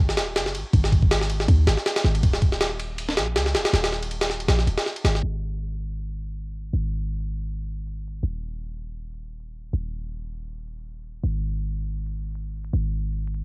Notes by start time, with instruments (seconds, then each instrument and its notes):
Already playing: 808-style bass G#1
0.09 snare
0.17 808-style bass D#1, snare, ride
0.36 808-style bass F#1, snare, ride
0.46 snare
0.55 808-style bass G#1, ride
0.74 808-style bass G#1, kick, ride
0.84 snare
0.92 kick, ride
1.03 kick
1.11 snare, ride
1.22 snare
1.30 ride
1.40 snare
1.48 808-style bass D#2, kick, ride
1.67 808-style bass G#1, snare, ride
1.77 snare
1.86 snare, ride
1.96 snare, ride
2.04 808-style bass G#1, snare
2.15 ride
2.23 808-style bass D#1, kick, ride
2.34 snare
2.42 kick, ride
2.52 snare
2.61 snare, ride
2.80 ride
2.98 ride
3.09 snare
3.17 808-style bass A#1, snare, ride
3.36 808-style bass C#2, snare, ride
3.46 snare
3.54 808-style bass D#1, snare, ride
3.65 snare, ride
3.73 808-style bass D#1, snare, ride
3.84 snare, ride
3.92 snare
4.03 ride
4.11 ride
4.21 snare, ride
4.30 snare
4.40 ride
4.48 808-style bass A#1, snare, ride
4.59 snare
4.67 808-style bass D#1, ride
4.77 snare, ride
4.86 snare
4.96 ride
5.04 808-style bass G#1, snare, ride
5.15 snare
5.23 808-style bass G#1
6.73 808-style bass G#1
8.23 808-style bass D#1
9.73 808-style bass D#1
11.24 808-style bass G#1
12.73 808-style bass G#1